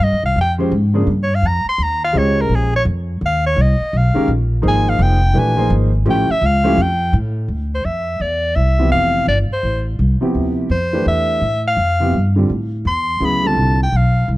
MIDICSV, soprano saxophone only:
0, 0, Header, 1, 2, 480
1, 0, Start_track
1, 0, Tempo, 357143
1, 480, Time_signature, 4, 2, 24, 8
1, 19323, End_track
2, 0, Start_track
2, 0, Title_t, "Soprano saxophone"
2, 0, Program_c, 0, 64
2, 51, Note_on_c, 0, 75, 92
2, 336, Note_off_c, 0, 75, 0
2, 344, Note_on_c, 0, 77, 87
2, 486, Note_off_c, 0, 77, 0
2, 550, Note_on_c, 0, 79, 96
2, 715, Note_off_c, 0, 79, 0
2, 1657, Note_on_c, 0, 73, 80
2, 1813, Note_on_c, 0, 77, 88
2, 1833, Note_off_c, 0, 73, 0
2, 1977, Note_on_c, 0, 82, 88
2, 1997, Note_off_c, 0, 77, 0
2, 2258, Note_off_c, 0, 82, 0
2, 2271, Note_on_c, 0, 84, 98
2, 2459, Note_on_c, 0, 82, 91
2, 2480, Note_off_c, 0, 84, 0
2, 2739, Note_off_c, 0, 82, 0
2, 2747, Note_on_c, 0, 77, 95
2, 2929, Note_on_c, 0, 73, 84
2, 2949, Note_off_c, 0, 77, 0
2, 3240, Note_on_c, 0, 70, 94
2, 3261, Note_off_c, 0, 73, 0
2, 3426, Note_on_c, 0, 68, 78
2, 3446, Note_off_c, 0, 70, 0
2, 3701, Note_off_c, 0, 68, 0
2, 3709, Note_on_c, 0, 73, 99
2, 3798, Note_off_c, 0, 73, 0
2, 4381, Note_on_c, 0, 77, 85
2, 4638, Note_off_c, 0, 77, 0
2, 4656, Note_on_c, 0, 73, 91
2, 4860, Note_on_c, 0, 75, 79
2, 4880, Note_off_c, 0, 73, 0
2, 5342, Note_on_c, 0, 77, 86
2, 5362, Note_off_c, 0, 75, 0
2, 5786, Note_off_c, 0, 77, 0
2, 6287, Note_on_c, 0, 80, 104
2, 6573, Note_on_c, 0, 77, 101
2, 6593, Note_off_c, 0, 80, 0
2, 6752, Note_on_c, 0, 79, 90
2, 6772, Note_off_c, 0, 77, 0
2, 7238, Note_on_c, 0, 80, 103
2, 7258, Note_off_c, 0, 79, 0
2, 7692, Note_off_c, 0, 80, 0
2, 8200, Note_on_c, 0, 79, 94
2, 8482, Note_on_c, 0, 76, 105
2, 8502, Note_off_c, 0, 79, 0
2, 8679, Note_on_c, 0, 77, 95
2, 8699, Note_off_c, 0, 76, 0
2, 9163, Note_on_c, 0, 79, 99
2, 9183, Note_off_c, 0, 77, 0
2, 9614, Note_off_c, 0, 79, 0
2, 10415, Note_on_c, 0, 72, 71
2, 10555, Note_on_c, 0, 76, 78
2, 10575, Note_off_c, 0, 72, 0
2, 11045, Note_on_c, 0, 74, 80
2, 11065, Note_off_c, 0, 76, 0
2, 11503, Note_on_c, 0, 76, 93
2, 11523, Note_off_c, 0, 74, 0
2, 11980, Note_off_c, 0, 76, 0
2, 11988, Note_on_c, 0, 77, 106
2, 12434, Note_off_c, 0, 77, 0
2, 12477, Note_on_c, 0, 74, 82
2, 12615, Note_off_c, 0, 74, 0
2, 12808, Note_on_c, 0, 72, 77
2, 13242, Note_off_c, 0, 72, 0
2, 14399, Note_on_c, 0, 72, 70
2, 14843, Note_off_c, 0, 72, 0
2, 14891, Note_on_c, 0, 76, 89
2, 15620, Note_off_c, 0, 76, 0
2, 15693, Note_on_c, 0, 77, 92
2, 16587, Note_off_c, 0, 77, 0
2, 17298, Note_on_c, 0, 84, 93
2, 17803, Note_on_c, 0, 83, 100
2, 17823, Note_off_c, 0, 84, 0
2, 18102, Note_on_c, 0, 81, 96
2, 18122, Note_off_c, 0, 83, 0
2, 18568, Note_off_c, 0, 81, 0
2, 18586, Note_on_c, 0, 79, 83
2, 18770, Note_on_c, 0, 77, 75
2, 18790, Note_off_c, 0, 79, 0
2, 19227, Note_off_c, 0, 77, 0
2, 19323, End_track
0, 0, End_of_file